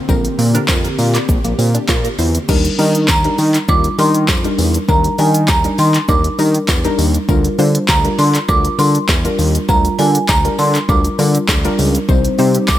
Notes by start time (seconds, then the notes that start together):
Already playing: D3 A#3 C4
0.09 A#1 D3 F3 C4 G4 A#4, kick, tambourine, shaker
0.25 closed hi-hat, shaker
0.39 A#2 C4, open hi-hat, shaker
0.55 D3 C4 D4 A#4, closed hi-hat, shaker
0.68 F2 D3 C4 F4 A#4, kick, snare, clap, tambourine, shaker
0.84 A#4, closed hi-hat, shaker
0.99 A#2, open hi-hat, tambourine, shaker
1.14 D5, clap, closed hi-hat, shaker
1.29 A#1 F3, kick, shaker
1.44 A#1 A#3, closed hi-hat, shaker
1.59 A#2 C4, open hi-hat, tambourine, shaker
1.74 D4, closed hi-hat, shaker
1.89 A#2 F4, kick, snare, clap, tambourine, shaker
2.04 A#4, closed hi-hat, shaker
2.18 E2 C5, open hi-hat, tambourine, shaker
2.35 closed hi-hat, shaker
2.49 D#2 G3 D4 D#4 A#4, kick, crash, tambourine, shaker
2.65 closed hi-hat, shaker
2.79 D#3 G3 D4 D#4 A#4, open hi-hat, shaker
2.95 closed hi-hat, shaker
3.08 D#2 A#5, kick, snare, clap, tambourine, shaker
3.24 G3 D4 D#4 A#4, closed hi-hat, shaker
3.38 D#3, open hi-hat, tambourine, shaker
3.54 clap, closed hi-hat, shaker
3.68 D#2 G3 D4 D#4 F4 D6, kick, tambourine, shaker
3.84 closed hi-hat, shaker
3.98 D#3 G3 D4 D#4 A#4 C6, open hi-hat, tambourine, shaker
4.15 closed hi-hat, shaker
4.28 F2, kick, snare, clap, tambourine, shaker
4.44 G3 D4 D#4 A#4, closed hi-hat, shaker
4.58 E2, open hi-hat, tambourine, shaker
4.74 closed hi-hat, shaker
4.88 D#2 G3 D4 D#4 A#4 A#5, kick, tambourine, shaker
5.04 closed hi-hat, shaker
5.18 D#3 G3 D4 D#4 A#4 G#5, open hi-hat, tambourine, shaker
5.35 closed hi-hat, shaker
5.48 D#2 A#5, kick, snare, clap, tambourine, shaker
5.64 G3 D4 D#4 A#4, closed hi-hat, shaker
5.78 D#3 C6, open hi-hat, tambourine, shaker
5.94 clap, closed hi-hat, shaker
6.08 D#2 G3 D4 D#4 A#4 D6, kick, tambourine, shaker
6.24 closed hi-hat, shaker
6.38 D#3 G3 D4 D#4 A#4, open hi-hat, tambourine, shaker
6.55 closed hi-hat, shaker
6.69 E2, kick, snare, clap, tambourine, shaker
6.84 G3 D4 D#4 A#4, closed hi-hat, shaker
6.99 D#2, open hi-hat, tambourine, shaker
7.15 closed hi-hat, shaker
7.28 D2 G3 D4 F4 A#4, kick, tambourine, shaker
7.45 closed hi-hat, shaker
7.58 D3 G3 D4 F4 C5, open hi-hat, shaker
7.75 closed hi-hat, shaker
7.88 D2 A#5, kick, snare, clap, tambourine, shaker
8.04 G3 D4 F4 A#4, closed hi-hat, shaker
8.19 D3 C6, open hi-hat, tambourine, shaker
8.35 clap, closed hi-hat, shaker
8.49 D2 G3 D4 F4 A#4 D6, kick, tambourine, shaker
8.65 closed hi-hat, shaker
8.78 D3 G3 D4 F4 A#4 C6, open hi-hat, tambourine, shaker
8.95 closed hi-hat, shaker
9.09 E2, kick, snare, clap, tambourine, shaker
9.25 G3 D4 F4 A#4, closed hi-hat, shaker
9.39 D#2, open hi-hat, tambourine, shaker
9.55 closed hi-hat, shaker
9.69 D2 G3 D4 F4 A#4 A#5, kick, tambourine, shaker
9.85 closed hi-hat, shaker
9.98 D3 G3 D4 F4 A#4 G#5, open hi-hat, tambourine, shaker
10.15 closed hi-hat, shaker
10.29 D2 A#5, kick, snare, clap, tambourine, shaker
10.44 G3 D4 F4 A#4, closed hi-hat, shaker
10.59 D3 C6, open hi-hat, tambourine, shaker
10.75 clap, closed hi-hat, shaker
10.89 D2 G3 D4 F4 A#4 D6, kick, tambourine, shaker
11.05 closed hi-hat, shaker
11.18 D3 G3 D4 F4 A#4, open hi-hat, tambourine, shaker
11.35 closed hi-hat, shaker
11.49 D2, kick, snare, clap, tambourine, shaker
11.64 G3 D4 F4 A#4, closed hi-hat, shaker
11.79 C#2, open hi-hat, tambourine, shaker
11.95 closed hi-hat, shaker
12.08 C2 G3 C4 D#4 G4 C5, kick, tambourine, shaker
12.25 closed hi-hat, shaker
12.38 C3 G3 C4 D#4 C5, open hi-hat, shaker
12.55 closed hi-hat, shaker
12.68 C2 D6, kick, snare, clap, tambourine, shaker